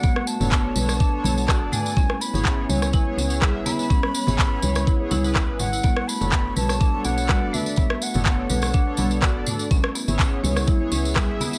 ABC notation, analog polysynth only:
X:1
M:4/4
L:1/16
Q:"Swing 16ths" 1/4=124
K:Bdor
V:1 name="Analog polysynth"
[B,DAc] z2 [B,DAc]3 [B,DAc]3 [B,DAc]3 [B,DAd]4 | [B,EGc] z2 [B,EGc]3 [B,EGc]3 [B,EGc]3 [B,EGe]4 | [B,EGc] z2 [B,EGc]3 [B,EGc]3 [B,EGc]2 [B,EGB]3 [B,EGc] z | [B,DAc] z2 [B,DAc]3 [B,DAc]3 [B,DAc]3 [B,DAd]4 |
[B,DAc] z2 [B,DAc]3 [B,DAc]3 [B,DAc]3 [B,DAd]4 | [B,EGc] z2 [B,EGc]3 [B,EGc]3 [B,EGc]3 [B,EGe]4 |]